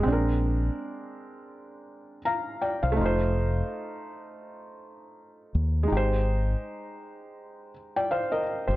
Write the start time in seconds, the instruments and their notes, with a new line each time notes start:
0.00 felt piano G#3 C4
0.06 fingered electric bass A#1, felt piano D4
0.12 felt piano A#4
2.25 felt piano F5 A#5
2.62 felt piano D5 G5
2.83 fingered electric bass C2, felt piano C5 F5
2.92 felt piano A3
2.97 fingered electric bass F1, felt piano D#4
3.01 felt piano F4
3.06 felt piano C5
5.55 fingered electric bass D#2
5.83 felt piano G#3
5.88 fingered electric bass G#1, felt piano D#4
5.92 felt piano G4
5.97 felt piano C5
7.96 felt piano D5 G5
8.11 felt piano C5 F5
8.32 felt piano A#4 D#5
8.67 fingered electric bass G1, felt piano G4 C5